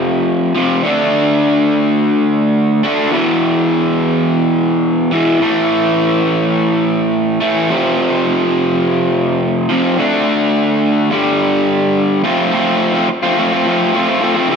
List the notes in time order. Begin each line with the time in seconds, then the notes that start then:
Already playing: F2 C3 F3 A3
0.55 F2 C3 F3
0.83 D3 A3 D4
2.83 D3 A3 D4
3.11 E2 B2 E3
5.11 E2 B2 E3
5.40 A2 E3 A3
7.40 A2 E3 A3
7.69 F2 C3 F3
9.69 F2 C3 F3
9.97 D3 A3 D4
11.11 G2 D3 G3
12.24 F3 A3 C4 F4
12.52 F3 A3 C4 F4
12.94 A3 C4 F4
13.08 muted overdriven electric guitar stroke
13.23 A3 C4 F4
13.37 F3 A3 C4 F4
13.51 A3 C4 F4
13.66 F3 A3 C4 F4
13.94 F3 A3 C4 F4
14.08 A3 C4 F4
14.21 F3 A3 C4 F4
14.36 A3 C4 F4
14.50 C3 E3 G3 C4 E4